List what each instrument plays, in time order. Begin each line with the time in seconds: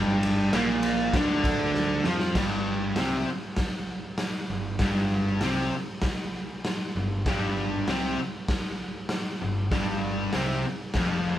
Already playing: picked electric bass G1, distorted electric guitar G2 G3
0.23 ride
0.53 picked electric bass A#1, distorted electric guitar A#2 A#3, snare, ride
0.83 ride
1.13 picked electric bass D2, distorted electric guitar D3 D4, kick, snare, ride
1.44 kick, ride
1.74 snare
2.04 picked electric bass F2, distorted electric guitar F3 F4, snare
2.20 snare
2.35 picked electric bass G1, distorted electric guitar G2 G3, kick, snare, crash
2.95 picked electric bass C2, distorted electric guitar C3, snare, open hi-hat
2.99 distorted electric guitar C4
3.57 kick, snare, open hi-hat
4.18 snare, open hi-hat
4.50 picked electric bass G1, distorted electric guitar G2
4.79 picked electric bass G1, distorted electric guitar G2 G3, kick, snare, open hi-hat
5.41 picked electric bass C2, distorted electric guitar C3 C4, snare, open hi-hat
6.02 kick, snare, open hi-hat
6.65 snare, open hi-hat
6.96 picked electric bass G1, distorted electric guitar G2
7.25 picked electric bass G1, distorted electric guitar G2 G3, kick, snare, open hi-hat
7.87 picked electric bass C2, distorted electric guitar C3 C4, snare, open hi-hat
8.48 kick, snare, open hi-hat
9.09 snare, open hi-hat
9.42 picked electric bass G1, distorted electric guitar G2
9.71 picked electric bass G1, distorted electric guitar G2 G3, kick, snare, open hi-hat
10.33 picked electric bass C2, distorted electric guitar C3 C4, snare, open hi-hat
10.94 picked electric bass F1, distorted electric guitar F2 F3, kick, snare, open hi-hat